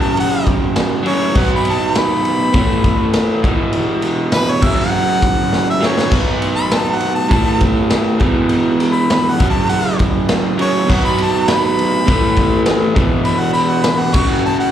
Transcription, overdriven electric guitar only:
0.00 1.03 F#2 loud
0.00 1.04 C#3 loud
0.00 1.02 F#3 loud
1.03 1.33 C#3 medium
1.03 1.32 F#3 loud
1.07 1.34 F#2 medium
1.34 2.52 B2 loud
1.34 2.53 F#3 loud
1.38 2.54 B3 loud
2.53 3.41 A2 medium
2.53 3.42 E3 medium
2.57 3.43 A3 loud
3.43 4.61 E2 medium
3.43 4.62 B2 loud
3.43 4.62 E3 loud
4.61 5.80 F#2 loud
4.61 5.81 C#3 loud
4.61 5.79 F#3 loud
5.81 6.08 C#3 medium
5.81 6.10 F#3 medium
5.85 6.12 F#2 medium
6.08 7.28 B2 loud
6.08 7.29 F#3 loud
6.08 7.30 B3 loud
7.28 8.18 A2 medium
7.28 8.19 E3 loud
7.28 8.19 A3 loud
8.18 9.37 E2 loud
8.18 9.38 B2 loud
8.18 9.39 E3 loud
9.39 10.57 F#2 loud
9.39 10.58 C#3 loud
9.39 10.56 F#3 loud
10.57 10.88 F#2 medium
10.57 10.86 C#3 medium
10.57 10.86 F#3 medium
10.86 12.04 B2 medium
10.86 12.05 F#3 loud
10.91 12.07 B3 loud
12.06 12.94 A2 loud
12.06 12.94 E3 loud
12.06 12.96 A3 loud
12.94 14.12 E2 loud
12.94 14.12 B2 loud
12.94 14.13 E3 loud
14.13 14.71 F#2 loud
14.13 14.71 C#3 loud
14.17 14.71 F#3 loud

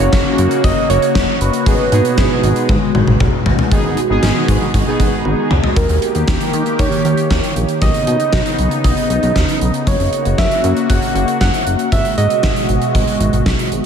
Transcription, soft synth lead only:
0.00 0.66 C#5 loud
0.64 0.91 D#5 loud
0.90 1.41 C#5 loud
1.41 3.42 B4 loud
5.77 6.81 A#4 medium
6.79 7.83 C#5 loud
7.82 8.84 D#5 loud
8.84 9.57 D#5 loud
9.87 10.40 C#5 loud
10.38 10.89 E5 loud
10.90 11.37 F#5 loud
11.41 11.89 F#5 loud
11.92 12.16 E5 loud
12.18 13.68 D#5 loud

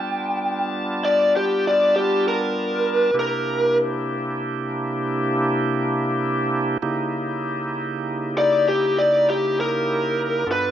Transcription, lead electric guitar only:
0.00 0.68 G5 medium
1.05 1.33 D5 medium
1.37 1.64 G4 medium
1.67 1.95 D5 medium
1.96 2.24 G4 medium
2.28 3.15 A#4 medium
3.19 3.77 A#4 loud
8.38 8.66 D5 medium
8.69 8.96 G4 medium
8.98 9.26 D5 medium
9.30 9.57 G4 medium
9.61 10.47 A#4 medium
10.51 10.71 B4 loud

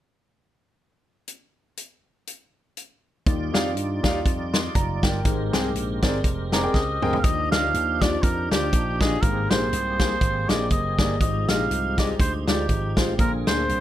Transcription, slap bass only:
3.27 3.50 D#2 loud
3.55 3.76 F2 medium
3.76 4.00 G2 medium
4.04 4.23 D#2 medium
4.26 4.68 F2 loud
4.76 4.99 F#1 medium
5.03 5.22 G1 medium
5.25 5.49 G#1 medium
5.53 5.72 C2 medium
5.75 5.99 A#1 medium
6.03 6.21 G#1 medium
6.24 6.67 F1 loud
6.74 6.98 C#2 medium
7.02 7.21 D2 medium
7.24 7.48 D#2 loud
7.52 7.70 D2 medium
7.74 8.16 D#2 medium
8.23 8.47 F2 loud
8.52 8.70 D2 medium
8.73 9.15 A#1 medium
9.23 9.46 G#1 medium
9.51 9.69 A#1 medium
9.73 10.14 C2 loud
10.21 10.45 G#1 medium
10.50 10.68 A#1 medium
10.71 10.95 F#1 medium
10.99 11.17 G1 medium
11.21 11.44 G#1 loud
11.49 11.67 A#1 medium
11.71 12.13 C2 medium
12.20 12.44 D2 medium
12.48 12.66 D2 medium
12.69 12.93 G#1 medium
12.97 13.16 A1 medium
13.19 13.43 A#1 loud
13.47 13.66 D2 medium
13.69 13.80 C2 loud

